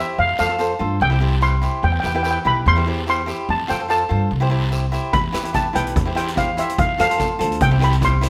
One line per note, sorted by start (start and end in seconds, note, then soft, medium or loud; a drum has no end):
0.00 0.18 E4 medium
0.00 0.18 G4 medium
0.00 0.19 C5 medium
0.00 0.19 E5 medium
0.18 0.35 F2 loud
0.18 0.28 F5 loud
0.18 long guiro medium
0.38 0.72 F2 medium
0.38 0.46 F4 medium
0.38 0.46 A4 medium
0.38 0.46 C5 medium
0.38 1.03 F5 loud
0.38 short guiro medium
0.49 0.55 F4 medium
0.49 0.56 A4 medium
0.49 0.56 C5 medium
0.59 0.72 F4 medium
0.59 0.73 A4 medium
0.59 0.73 C5 medium
0.59 short guiro medium
0.79 0.97 G2 medium
0.79 0.99 F4 medium
0.79 0.99 A4 medium
0.79 0.99 C5 medium
1.00 1.66 C2 loud
1.00 1.44 G5 loud
1.00 long guiro medium
1.10 1.17 E4 medium
1.10 1.17 G4 medium
1.10 1.18 C5 medium
1.20 1.34 E4 medium
1.20 1.35 G4 medium
1.20 1.35 C5 medium
1.41 1.55 E4 medium
1.41 1.55 G4 medium
1.41 1.55 B4 medium
1.41 1.72 C6 loud
1.41 short guiro medium
1.62 1.83 E4 medium
1.62 1.84 G4 medium
1.62 1.84 C5 medium
1.62 short guiro medium
1.83 2.00 E2 loud
1.83 1.91 G5 medium
1.83 long guiro medium
1.92 1.99 G5 medium
2.00 2.10 E4 medium
2.00 2.11 G4 medium
2.00 2.05 G5 medium
2.04 2.36 E2 medium
2.04 2.11 B4 medium
2.04 2.15 G5 medium
2.04 short guiro medium
2.14 2.21 E4 medium
2.14 2.21 G4 medium
2.14 2.21 B4 medium
2.14 2.22 G5 medium
2.23 2.38 E4 medium
2.23 2.38 G4 medium
2.23 2.38 B4 medium
2.23 2.29 G5 medium
2.23 short guiro medium
2.31 2.38 G5 medium
2.45 2.62 B1 medium
2.45 2.64 E4 medium
2.45 2.64 G4 medium
2.45 2.64 B4 medium
2.45 2.67 B5 loud
2.66 3.31 E2 loud
2.66 3.08 C6 loud
2.66 long guiro medium
2.76 2.82 E4 medium
2.76 2.83 G4 medium
2.76 2.83 C5 medium
2.86 2.99 E4 medium
2.86 3.00 G4 medium
2.86 3.00 C5 medium
3.06 3.20 E4 medium
3.06 3.21 G4 medium
3.06 3.21 C5 medium
3.06 3.51 C6 loud
3.06 short guiro medium
3.26 3.48 E4 medium
3.26 3.48 G4 medium
3.26 3.49 C5 medium
3.26 short guiro medium
3.49 3.65 F2 loud
3.49 3.71 A5 medium
3.49 long guiro medium
3.68 4.02 F2 medium
3.68 3.75 F4 medium
3.68 3.76 A4 medium
3.68 3.76 C5 medium
3.68 3.91 G5 medium
3.68 short guiro medium
3.79 3.85 F4 medium
3.79 3.86 A4 medium
3.79 3.86 C5 medium
3.89 4.02 F4 medium
3.89 4.03 A4 medium
3.89 4.03 C5 medium
3.89 4.89 A5 medium
3.89 short guiro medium
4.09 4.27 G2 medium
4.09 4.28 F4 medium
4.09 4.29 A4 medium
4.09 4.29 C5 medium
4.31 4.96 C2 medium
4.31 long guiro medium
4.40 4.47 E4 medium
4.40 4.47 G4 medium
4.40 4.48 C5 loud
4.50 4.64 E4 medium
4.50 4.64 G4 medium
4.50 4.65 C5 medium
4.71 4.85 E4 medium
4.71 4.85 G4 medium
4.71 4.85 C5 medium
4.71 short guiro medium
4.92 5.13 E4 medium
4.92 5.13 G4 medium
4.92 5.14 C5 loud
4.92 short guiro medium
5.13 5.29 E2 medium
5.13 5.56 B5 loud
5.13 kick loud
5.13 closed hi-hat medium
5.13 long guiro medium
5.32 5.66 E2 medium
5.32 5.40 E4 medium
5.32 5.40 G4 medium
5.32 5.41 B4 medium
5.32 cross-stick medium
5.32 closed hi-hat medium
5.32 short guiro medium
5.43 5.50 E4 medium
5.43 5.50 G4 medium
5.43 5.51 B4 medium
5.43 closed hi-hat medium
5.53 5.67 E4 medium
5.53 5.67 G4 medium
5.53 5.68 B4 medium
5.53 5.74 A5 loud
5.53 kick medium
5.53 closed hi-hat medium
5.53 short guiro medium
5.73 5.92 B1 medium
5.73 5.93 E4 medium
5.73 5.93 G4 medium
5.73 5.94 B4 medium
5.73 6.15 G5 medium
5.73 closed hi-hat medium
5.87 closed hi-hat medium
5.96 6.61 E2 loud
5.96 kick loud
5.96 closed hi-hat medium
5.96 long guiro medium
6.06 6.12 E4 medium
6.06 6.12 G4 medium
6.06 6.13 C5 medium
6.15 6.29 E4 medium
6.15 6.29 G4 medium
6.15 6.30 C5 medium
6.15 6.36 G5 medium
6.15 cross-stick medium
6.15 closed hi-hat medium
6.28 closed hi-hat medium
6.35 6.49 E4 medium
6.35 6.50 G4 medium
6.35 6.50 C5 medium
6.35 6.59 F5 medium
6.35 kick medium
6.35 closed hi-hat medium
6.35 short guiro medium
6.57 6.78 E4 medium
6.57 6.78 G4 medium
6.57 6.79 C5 medium
6.57 6.80 E5 medium
6.57 closed hi-hat medium
6.57 short guiro medium
6.69 closed hi-hat medium
6.78 6.94 F2 loud
6.78 6.99 F5 medium
6.78 kick loud
6.78 closed hi-hat medium
6.78 long guiro medium
6.98 7.32 F2 medium
6.98 7.05 F4 medium
6.98 7.06 A4 medium
6.98 7.06 C5 medium
6.98 7.63 F5 loud
6.98 cross-stick medium
6.98 closed hi-hat medium
6.98 short guiro medium
7.10 7.15 F4 medium
7.10 7.16 A4 medium
7.10 7.16 C5 medium
7.10 closed hi-hat medium
7.18 7.32 F4 medium
7.18 7.32 A4 medium
7.18 7.33 C5 medium
7.18 kick medium
7.18 closed hi-hat medium
7.18 short guiro medium
7.39 7.57 D2 loud
7.39 7.58 F4 medium
7.39 7.58 A4 medium
7.39 7.59 C5 medium
7.39 closed hi-hat medium
7.52 closed hi-hat medium
7.61 8.25 C2 loud
7.61 7.83 G5 loud
7.61 kick loud
7.61 closed hi-hat medium
7.61 long guiro medium
7.71 7.77 E4 medium
7.71 7.77 G4 medium
7.71 7.78 C5 medium
7.80 7.93 E4 medium
7.80 7.94 G4 medium
7.80 7.94 C5 medium
7.80 cross-stick medium
7.80 closed hi-hat medium
7.84 8.02 B5 medium
7.93 closed hi-hat soft
8.01 8.14 E4 medium
8.01 8.15 G4 medium
8.01 8.15 C5 medium
8.01 kick medium
8.01 closed hi-hat medium
8.01 short guiro medium
8.05 8.29 C6 loud
8.21 8.29 E4 medium
8.21 8.29 G4 medium
8.21 8.29 C5 loud
8.21 closed hi-hat medium
8.21 short guiro medium